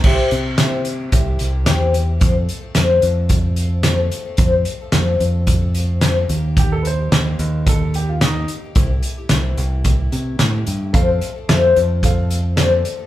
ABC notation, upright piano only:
X:1
M:4/4
L:1/16
Q:1/4=110
K:F
V:1 name="Upright piano"
z16 | z16 | z16 | G A [=Bc]6 A2 G F _E2 z2 |
z16 | z16 |]